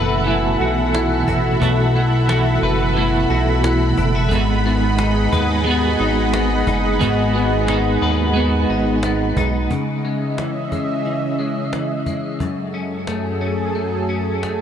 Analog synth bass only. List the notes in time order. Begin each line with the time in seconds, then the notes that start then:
Already playing: F#1
0.60 B1
1.28 A1
1.61 B1
2.63 F#1
3.30 B1
3.97 F#1
4.31 G#1
5.32 D#2
6.00 G#1
6.67 F#1
7.01 G#1
8.02 D#2
8.69 G#1
9.36 B1